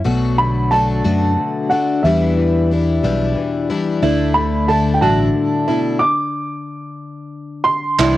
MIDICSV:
0, 0, Header, 1, 7, 480
1, 0, Start_track
1, 0, Key_signature, 2, "major"
1, 0, Tempo, 660793
1, 41, Time_signature, 6, 3, 24, 8
1, 5938, End_track
2, 0, Start_track
2, 0, Title_t, "Upright piano"
2, 0, Program_c, 0, 0
2, 278, Note_on_c, 0, 83, 86
2, 515, Note_on_c, 0, 81, 95
2, 528, Note_off_c, 0, 83, 0
2, 1232, Note_on_c, 0, 78, 74
2, 1262, Note_off_c, 0, 81, 0
2, 1461, Note_off_c, 0, 78, 0
2, 1472, Note_on_c, 0, 76, 69
2, 2650, Note_off_c, 0, 76, 0
2, 3154, Note_on_c, 0, 83, 79
2, 3402, Note_on_c, 0, 81, 69
2, 3406, Note_off_c, 0, 83, 0
2, 3589, Note_on_c, 0, 79, 57
2, 3598, Note_off_c, 0, 81, 0
2, 3641, Note_on_c, 0, 81, 72
2, 3642, Note_off_c, 0, 79, 0
2, 4353, Note_on_c, 0, 86, 86
2, 4384, Note_off_c, 0, 81, 0
2, 5528, Note_off_c, 0, 86, 0
2, 5550, Note_on_c, 0, 84, 94
2, 5938, Note_off_c, 0, 84, 0
2, 5938, End_track
3, 0, Start_track
3, 0, Title_t, "Five-string banjo"
3, 0, Program_c, 1, 105
3, 2925, Note_on_c, 1, 64, 86
3, 3395, Note_off_c, 1, 64, 0
3, 3404, Note_on_c, 1, 69, 68
3, 3639, Note_off_c, 1, 69, 0
3, 3645, Note_on_c, 1, 66, 75
3, 4115, Note_off_c, 1, 66, 0
3, 4124, Note_on_c, 1, 64, 66
3, 4359, Note_off_c, 1, 64, 0
3, 5806, Note_on_c, 1, 64, 90
3, 5938, Note_off_c, 1, 64, 0
3, 5938, End_track
4, 0, Start_track
4, 0, Title_t, "Twelve-string acoustic guitar"
4, 0, Program_c, 2, 25
4, 33, Note_on_c, 2, 47, 74
4, 37, Note_on_c, 2, 54, 73
4, 40, Note_on_c, 2, 57, 74
4, 42, Note_on_c, 2, 62, 76
4, 45, Note_on_c, 2, 66, 81
4, 509, Note_off_c, 2, 54, 0
4, 513, Note_off_c, 2, 57, 0
4, 517, Note_on_c, 2, 54, 49
4, 518, Note_off_c, 2, 47, 0
4, 522, Note_off_c, 2, 66, 0
4, 522, Note_on_c, 2, 57, 56
4, 523, Note_off_c, 2, 62, 0
4, 525, Note_on_c, 2, 62, 54
4, 531, Note_on_c, 2, 66, 56
4, 750, Note_off_c, 2, 66, 0
4, 753, Note_off_c, 2, 62, 0
4, 754, Note_off_c, 2, 57, 0
4, 759, Note_on_c, 2, 66, 58
4, 760, Note_off_c, 2, 54, 0
4, 761, Note_on_c, 2, 62, 59
4, 763, Note_on_c, 2, 57, 47
4, 768, Note_on_c, 2, 47, 46
4, 768, Note_on_c, 2, 54, 51
4, 1231, Note_off_c, 2, 66, 0
4, 1240, Note_on_c, 2, 66, 47
4, 1242, Note_off_c, 2, 62, 0
4, 1243, Note_off_c, 2, 57, 0
4, 1245, Note_on_c, 2, 62, 46
4, 1246, Note_off_c, 2, 47, 0
4, 1246, Note_off_c, 2, 54, 0
4, 1252, Note_on_c, 2, 57, 41
4, 1482, Note_off_c, 2, 66, 0
4, 1485, Note_off_c, 2, 62, 0
4, 1486, Note_off_c, 2, 57, 0
4, 1486, Note_on_c, 2, 40, 68
4, 1487, Note_on_c, 2, 47, 65
4, 1489, Note_on_c, 2, 52, 74
4, 1489, Note_on_c, 2, 55, 68
4, 1493, Note_on_c, 2, 62, 66
4, 1495, Note_on_c, 2, 64, 77
4, 1965, Note_off_c, 2, 40, 0
4, 1966, Note_off_c, 2, 47, 0
4, 1967, Note_off_c, 2, 55, 0
4, 1968, Note_off_c, 2, 52, 0
4, 1971, Note_on_c, 2, 52, 57
4, 1974, Note_on_c, 2, 55, 56
4, 1978, Note_off_c, 2, 62, 0
4, 1981, Note_on_c, 2, 62, 61
4, 1983, Note_off_c, 2, 64, 0
4, 1986, Note_on_c, 2, 64, 56
4, 2199, Note_off_c, 2, 64, 0
4, 2202, Note_off_c, 2, 55, 0
4, 2202, Note_off_c, 2, 62, 0
4, 2203, Note_off_c, 2, 52, 0
4, 2207, Note_on_c, 2, 64, 62
4, 2210, Note_on_c, 2, 62, 68
4, 2211, Note_on_c, 2, 55, 57
4, 2212, Note_on_c, 2, 52, 59
4, 2214, Note_on_c, 2, 47, 57
4, 2218, Note_on_c, 2, 40, 49
4, 2684, Note_off_c, 2, 64, 0
4, 2687, Note_on_c, 2, 64, 57
4, 2688, Note_off_c, 2, 55, 0
4, 2689, Note_off_c, 2, 47, 0
4, 2690, Note_off_c, 2, 62, 0
4, 2692, Note_off_c, 2, 40, 0
4, 2693, Note_on_c, 2, 62, 52
4, 2696, Note_on_c, 2, 55, 48
4, 2699, Note_off_c, 2, 52, 0
4, 2702, Note_on_c, 2, 52, 45
4, 2920, Note_off_c, 2, 52, 0
4, 2922, Note_off_c, 2, 62, 0
4, 2923, Note_off_c, 2, 55, 0
4, 2923, Note_off_c, 2, 64, 0
4, 2923, Note_on_c, 2, 50, 78
4, 2926, Note_on_c, 2, 57, 87
4, 2931, Note_on_c, 2, 62, 76
4, 2932, Note_on_c, 2, 64, 88
4, 3395, Note_off_c, 2, 50, 0
4, 3400, Note_off_c, 2, 57, 0
4, 3403, Note_on_c, 2, 50, 56
4, 3405, Note_off_c, 2, 62, 0
4, 3408, Note_off_c, 2, 64, 0
4, 3408, Note_on_c, 2, 57, 61
4, 3414, Note_on_c, 2, 62, 63
4, 3420, Note_on_c, 2, 64, 62
4, 3641, Note_off_c, 2, 64, 0
4, 3644, Note_off_c, 2, 50, 0
4, 3646, Note_off_c, 2, 57, 0
4, 3649, Note_off_c, 2, 62, 0
4, 3650, Note_on_c, 2, 64, 62
4, 3657, Note_on_c, 2, 57, 58
4, 3657, Note_on_c, 2, 62, 56
4, 3661, Note_on_c, 2, 50, 53
4, 4117, Note_off_c, 2, 64, 0
4, 4125, Note_off_c, 2, 62, 0
4, 4125, Note_on_c, 2, 64, 51
4, 4130, Note_off_c, 2, 57, 0
4, 4132, Note_off_c, 2, 50, 0
4, 4134, Note_on_c, 2, 62, 44
4, 4143, Note_on_c, 2, 57, 42
4, 4365, Note_off_c, 2, 64, 0
4, 4369, Note_off_c, 2, 62, 0
4, 4373, Note_off_c, 2, 57, 0
4, 5805, Note_on_c, 2, 48, 79
4, 5807, Note_on_c, 2, 52, 81
4, 5810, Note_on_c, 2, 55, 84
4, 5816, Note_on_c, 2, 62, 77
4, 5816, Note_on_c, 2, 64, 86
4, 5938, Note_off_c, 2, 48, 0
4, 5938, Note_off_c, 2, 52, 0
4, 5938, Note_off_c, 2, 55, 0
4, 5938, Note_off_c, 2, 62, 0
4, 5938, Note_off_c, 2, 64, 0
4, 5938, End_track
5, 0, Start_track
5, 0, Title_t, "Steel-string acoustic guitar"
5, 0, Program_c, 3, 25
5, 276, Note_on_c, 3, 50, 52
5, 987, Note_off_c, 3, 50, 0
5, 996, Note_on_c, 3, 50, 55
5, 1480, Note_off_c, 3, 50, 0
5, 1498, Note_on_c, 3, 67, 61
5, 1720, Note_on_c, 3, 52, 56
5, 2433, Note_off_c, 3, 52, 0
5, 2436, Note_on_c, 3, 52, 55
5, 2903, Note_off_c, 3, 67, 0
5, 2922, Note_on_c, 3, 38, 70
5, 2944, Note_off_c, 3, 52, 0
5, 3164, Note_on_c, 3, 50, 57
5, 3643, Note_off_c, 3, 38, 0
5, 3647, Note_on_c, 3, 43, 59
5, 3884, Note_on_c, 3, 45, 56
5, 3885, Note_off_c, 3, 43, 0
5, 4123, Note_off_c, 3, 45, 0
5, 4126, Note_on_c, 3, 47, 60
5, 4365, Note_off_c, 3, 47, 0
5, 5802, Note_off_c, 3, 50, 0
5, 5938, End_track
6, 0, Start_track
6, 0, Title_t, "Fingered electric bass"
6, 0, Program_c, 4, 33
6, 40, Note_on_c, 4, 35, 81
6, 733, Note_off_c, 4, 35, 0
6, 763, Note_on_c, 4, 42, 83
6, 984, Note_off_c, 4, 42, 0
6, 1480, Note_on_c, 4, 40, 89
6, 2174, Note_off_c, 4, 40, 0
6, 2204, Note_on_c, 4, 35, 87
6, 2425, Note_off_c, 4, 35, 0
6, 2925, Note_on_c, 4, 38, 92
6, 3615, Note_off_c, 4, 38, 0
6, 3645, Note_on_c, 4, 33, 87
6, 3865, Note_off_c, 4, 33, 0
6, 5803, Note_on_c, 4, 36, 89
6, 5938, Note_off_c, 4, 36, 0
6, 5938, End_track
7, 0, Start_track
7, 0, Title_t, "Drums"
7, 5805, Note_on_c, 9, 39, 93
7, 5877, Note_off_c, 9, 39, 0
7, 5938, End_track
0, 0, End_of_file